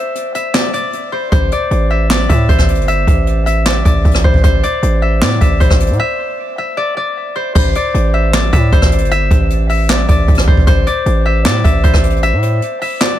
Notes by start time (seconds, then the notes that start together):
Already playing: C5 D5 E5
0.15 closed hi-hat
0.35 E5, closed hi-hat
0.54 D5, snare, clap
0.73 D5, closed hi-hat
0.93 closed hi-hat
1.12 C5
1.32 A1 C5, kick, closed hi-hat
1.52 D5, closed hi-hat
1.71 A1, closed hi-hat
1.90 E5
2.10 D5, snare, clap
2.29 A2 E5, kick, closed hi-hat
2.49 A1 C5, kick, closed hi-hat
2.59 kick, cross-stick
2.68 closed hi-hat
2.75 G1, closed hi-hat
2.81 closed hi-hat
2.88 E5, closed hi-hat
3.07 A1, kick, closed hi-hat
3.27 closed hi-hat
3.46 E5, closed hi-hat
3.66 D5, snare, clap
3.85 A1 D5, kick, closed hi-hat
4.05 A1, kick, closed hi-hat
4.11 cross-stick, closed hi-hat
4.18 closed hi-hat
4.24 A1 C5, kick
4.34 kick
4.44 A1 C5, kick, closed hi-hat
4.63 D5, closed hi-hat
4.83 A1, closed hi-hat
5.02 E5
5.22 A2 D5, snare, clap
5.41 A1 E5, kick, closed hi-hat
5.60 A1 C5, kick, closed hi-hat
5.70 A1, kick, cross-stick
5.80 closed hi-hat
5.87 A2, closed hi-hat
5.93 closed hi-hat
6.00 E5
6.58 E5
6.77 D5
6.97 D5
7.36 C5
7.55 A1 C5, kick, crash
7.75 D5, closed hi-hat
7.94 A1, closed hi-hat
8.14 E5
8.33 D5, cross-stick, snare, clap, closed hi-hat
8.53 A2 E5, kick, closed hi-hat
8.72 A1 C5, kick, closed hi-hat
8.82 kick, cross-stick
8.92 closed hi-hat
8.98 G1, closed hi-hat
9.05 closed hi-hat
9.11 E5, closed hi-hat
9.31 A1, kick, closed hi-hat
9.50 closed hi-hat
9.69 E5, open hi-hat
9.89 D5, snare, clap, closed hi-hat
10.09 A1 D5, kick, closed hi-hat
10.28 A1, kick, closed hi-hat
10.35 cross-stick, closed hi-hat
10.41 closed hi-hat
10.47 A1 C5, kick
10.57 kick
10.67 A1 C5, kick, closed hi-hat
10.87 D5, closed hi-hat
11.06 A1, closed hi-hat
11.26 E5
11.45 A2 D5, snare, clap, closed hi-hat
11.64 A1 E5, kick, closed hi-hat
11.84 A1 C5, kick, closed hi-hat
11.94 A1, kick, cross-stick
12.03 closed hi-hat
12.10 closed hi-hat
12.16 closed hi-hat
12.23 E5, closed hi-hat
12.33 A2
12.43 closed hi-hat
12.62 closed hi-hat
12.82 E5, open hi-hat
13.01 D5, snare, clap, closed hi-hat